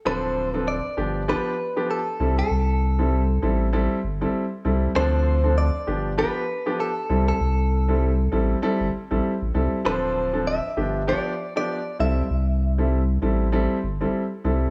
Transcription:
0.05 sub bass D1, grand piano F3 C4 D4 A4, clean electric guitar C5
0.52 grand piano F3 C4 D4 A4, clean electric guitar B4
0.68 clean electric guitar D5
0.97 sub bass G1, grand piano F3 B3 D4 G4
1.28 grand piano F3 B3 D4 G4, clean electric guitar B4
1.76 grand piano F3 B3 D4 G4
1.91 clean electric guitar A4
2.20 sub bass C2, grand piano G3 C4 E4 A4
2.39 clean electric guitar A4
2.51 sub bass C2
2.99 grand piano G3 C4 E4 A4
3.42 sub bass A1, grand piano G3 C4 E4 A4
3.73 grand piano G3 C4 E4 A4
4.04 sub bass G1
4.21 grand piano G3 C4 E4 A4
4.65 sub bass C2, grand piano G3 C4 E4 A4
4.95 sub bass D2, grand piano F3 C4 D4 A4, clean electric guitar C5
5.44 grand piano F3 C4 D4 A4
5.58 clean electric guitar D5
5.87 sub bass G1, grand piano F3 B3 D4 G4
6.17 grand piano F3 B3 D4 G4, clean electric guitar B4
6.66 grand piano F3 B3 D4 G4
6.80 clean electric guitar A4
7.09 sub bass C2, grand piano G3 C4 E4 A4
7.28 clean electric guitar A4
7.40 sub bass C2
7.88 grand piano G3 C4 E4 A4
8.32 sub bass A1, grand piano G3 C4 E4 A4
8.62 grand piano G3 C4 E4 A4
8.80 sub bass G1
9.11 sub bass A1, grand piano G3 C4 E4 A4
9.42 sub bass A1
9.54 sub bass C2, grand piano G3 C4 E4 A4
9.85 sub bass D1, grand piano F3 C4 D4 A4, clean electric guitar C5
10.33 grand piano F3 C4 D4 A4
10.47 clean electric guitar E5
10.77 sub bass G1, grand piano F3 B3 D4 G4
11.07 grand piano F3 B3 D4 G4, clean electric guitar D5
11.56 grand piano F3 B3 D4 G4, clean electric guitar D5
11.99 sub bass C2, grand piano G3 C4 E4 A4, clean electric guitar E5
12.30 sub bass C2
12.78 grand piano G3 C4 E4 A4
13.22 sub bass A1, grand piano G3 C4 E4 A4
13.52 grand piano G3 C4 E4 A4
13.83 sub bass G1
14.01 grand piano G3 C4 E4 A4
14.44 sub bass C2, grand piano G3 C4 E4 A4

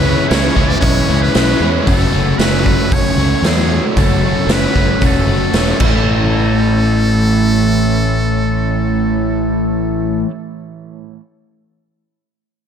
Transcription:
Already playing: fingered electric bass C#2, overdriven electric guitar C#3 E3, muted trumpet B4, analog synth pad B4 E5 C#6
0.03 overdriven electric guitar C#3 E3 G#3 C#4 E4
0.27 fingered electric bass C#2, overdriven electric guitar C#3 E3 G#3 C#4 E4, muted trumpet C#5, open hi-hat
0.32 snare
0.55 fingered electric bass C#2, overdriven electric guitar C#3 E3 G#3 C#4 E4, kick
0.68 muted trumpet D5
0.81 fingered electric bass B1, overdriven electric guitar C#3 E3 G#3, muted trumpet C#5, kick, open hi-hat
0.85 overdriven electric guitar C#4
1.09 fingered electric bass C#2, overdriven electric guitar C#3 G#3 C#4 E4
1.22 muted trumpet B4
1.33 fingered electric bass B1, overdriven electric guitar C#3 E3 G#3 C#4 E4, snare, open hi-hat
1.37 muted trumpet B4
1.60 fingered electric bass E2, overdriven electric guitar C#3 E3 G#3 C#4
1.87 fingered electric bass F#1, overdriven electric guitar F#2 C#3 F#3 A3 C#4 F#4, muted trumpet A4, kick, open hi-hat
2.12 fingered electric bass F#1, overdriven electric guitar F#3 A3 C#4 F#4
2.38 fingered electric bass F#1, overdriven electric guitar F#2 C#3 F#3 A3 C#4 F#4, muted trumpet B4, snare, open hi-hat
2.63 overdriven electric guitar A3 C#4 F#4, kick
2.67 overdriven electric guitar F#3
2.90 fingered electric bass F#1, overdriven electric guitar F#2 C#3 F#3 A3 C#4, muted trumpet C#5, kick, open hi-hat
3.17 fingered electric bass C#2, overdriven electric guitar F#3 A3 C#4 F#4
3.42 fingered electric bass E2, overdriven electric guitar C#3 F#3 A3 C#4 F#4, snare, open hi-hat
3.47 muted trumpet G#4
3.68 overdriven electric guitar F#3 A3 C#4
3.96 fingered electric bass F#1, overdriven electric guitar F#2 C#3 F#3 A3 C#4 F#4, muted trumpet A4, kick, open hi-hat
4.22 overdriven electric guitar F#3 A3 C#4 F#4
4.47 fingered electric bass F#1, overdriven electric guitar F#2 C#3 F#3 A3 C#4 F#4, snare, open hi-hat
4.52 muted trumpet B4
4.76 fingered electric bass F#1, overdriven electric guitar F#3 A3 C#4 F#4, kick
5.01 fingered electric bass E1, overdriven electric guitar F#2 C#3 F#3 A3 C#4, kick, open hi-hat
5.06 muted trumpet A4
5.27 fingered electric bass F#1, overdriven electric guitar A3 C#4 F#4
5.31 overdriven electric guitar F#3
5.53 fingered electric bass E1, overdriven electric guitar C#3 F#3 A3 C#4 F#4, snare, open hi-hat
5.79 fingered electric bass A1, overdriven electric guitar A2 E3 A3 C#4, muted trumpet A4, kick, crash
5.83 overdriven electric guitar E4 A4

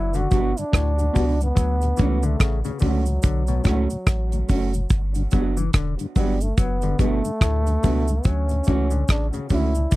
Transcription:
Already playing: sub bass F#1, clav F#3, trombone E4
0.14 tonewheel organ G2 D3, clav D3, trombone F#4, closed hi-hat, cabasa
0.31 sub bass G1, clav B2, tonewheel organ G3 B3 F#4, clean electric guitar B3 D4 F#4, kick, closed hi-hat, cabasa
0.55 tonewheel organ G2 D3, trombone D4, muted clean electric guitar stroke, closed hi-hat, cabasa
0.72 sub bass D2, clav A2, kick, cross-stick, closed hi-hat, cabasa
0.99 tonewheel organ G2 D3, closed hi-hat, cabasa
1.13 clav B2, tonewheel organ G3 B3 F#4, clean electric guitar B3 D4 F#4, kick, open hi-hat, cabasa
1.17 sub bass C#2
1.41 tonewheel organ G2 D3, trombone B3, closed hi-hat, cabasa
1.55 sub bass D2, clav F#3, kick, closed hi-hat, cabasa
1.81 tonewheel organ D2 A2, closed hi-hat, cabasa
1.97 sub bass C#2, clav E3, clean electric guitar A3 C#4 F#4, tonewheel organ C#4 D4 F#4, kick, closed hi-hat, cabasa
2.23 tonewheel organ D2 A2, clav D3, trombone A3, closed hi-hat, cabasa
2.39 sub bass A1, clav C#3, kick, cross-stick, closed hi-hat, cabasa
2.64 tonewheel organ D2 A2, clav C#3, closed hi-hat, cabasa
2.79 sub bass C#2, clav D3, clean electric guitar A3 C#4 F#4, tonewheel organ C#4 D4 F#4, kick, open hi-hat, cabasa
2.85 trombone F#3
3.06 tonewheel organ D2 A2, closed hi-hat, cabasa
3.22 sub bass B1, clav D3, kick, closed hi-hat, cabasa
3.47 tonewheel organ D2 A2, clav B2, closed hi-hat, cabasa
3.64 sub bass C#2, clav A2, clean electric guitar A3 C#4 F#4, tonewheel organ C#4 D4 F#4, kick, cross-stick, closed hi-hat, cabasa
3.90 tonewheel organ D2 A2, closed hi-hat, cabasa
4.07 sub bass A1, kick, cross-stick, closed hi-hat, cabasa
4.32 tonewheel organ D2 A2, closed hi-hat, cabasa
4.48 sub bass F#1, clean electric guitar A3 C#4 F#4, tonewheel organ C#4 D4 F#4, kick, open hi-hat, cabasa
4.74 tonewheel organ D2 A2, closed hi-hat, cabasa
4.90 sub bass G1, kick, closed hi-hat, cabasa
5.15 tonewheel organ G2 D3, closed hi-hat, cabasa
5.31 sub bass F#1, clav F#3, tonewheel organ G3 B3 F#4, clean electric guitar B3 D4 F#4, kick, closed hi-hat, cabasa
5.57 tonewheel organ G2 D3, clav E3, cabasa
5.73 sub bass E1, clav D3, kick, cross-stick, closed hi-hat, cabasa
5.99 tonewheel organ G2 D3, closed hi-hat, cabasa
6.16 sub bass G1, clav F#3, tonewheel organ G3 B3 F#4, trombone G3, clean electric guitar B3 D4 F#4, kick, open hi-hat, cabasa
6.41 tonewheel organ G2 D3, trombone A3, muted clean electric guitar stroke, closed hi-hat, cabasa
6.57 sub bass F#1, clav F#3, trombone B3, kick, closed hi-hat, cabasa
6.82 tonewheel organ G2 D3, clav D3, closed hi-hat, cabasa
6.99 sub bass G1, clav B2, tonewheel organ G3 B3 F#4, trombone A3, clean electric guitar B3 D4 F#4, kick, closed hi-hat, cabasa
7.25 tonewheel organ G2 D3, closed hi-hat, cabasa
7.41 sub bass D2, clav A2, kick, cross-stick, closed hi-hat, cabasa
7.66 tonewheel organ G2 D3, closed hi-hat, cabasa
7.83 sub bass C#2, clav B2, tonewheel organ G3 B3 F#4, clean electric guitar B3 D4 F#4, kick, open hi-hat, cabasa
8.08 tonewheel organ G2 D3, closed hi-hat, cabasa
8.24 sub bass D2, clav F#3, trombone C#4, kick, closed hi-hat, cabasa
8.49 tonewheel organ D2 A2, closed hi-hat, cabasa
8.64 clav E3, clean electric guitar A3, tonewheel organ C#4 D4 F#4, kick, closed hi-hat, cabasa
8.68 sub bass C#2, clean electric guitar C#4 F#4
8.91 tonewheel organ D2 A2, clav D3, closed hi-hat, cabasa
9.08 sub bass A1, clav C#3, trombone D4, kick, cross-stick, closed hi-hat, cabasa
9.33 tonewheel organ D2 A2, clav C#3, closed hi-hat, cabasa
9.49 sub bass C#2, clav D3, clean electric guitar A3 C#4 F#4, tonewheel organ C#4 D4 F#4, trombone E4, kick, open hi-hat, cabasa
9.75 tonewheel organ D2 A2, closed hi-hat, cabasa
9.91 sub bass B1, clav D3, kick, closed hi-hat, cabasa

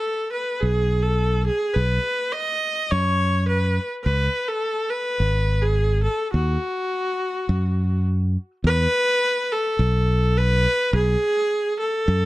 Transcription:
Already playing: viola A4
0.32 viola B4
0.60 fingered electric bass B1, viola G#4
1.03 viola A4
1.46 viola G#4
1.74 fingered electric bass B1, viola B4
2.32 viola D#5
2.91 fingered electric bass F#2, viola C#5
3.48 viola B4
4.04 fingered electric bass C#2, viola B4
4.48 viola A4
4.90 viola B4
5.20 fingered electric bass G#1
5.61 viola G#4
6.03 viola A4
6.33 fingered electric bass D#2, viola F#4
7.49 fingered electric bass F#2
8.64 fingered electric bass E2, viola B4
9.53 viola A4
9.79 fingered electric bass B1
10.38 viola B4
10.93 fingered electric bass B1, viola G#4
11.79 viola A4
12.08 fingered electric bass F#2

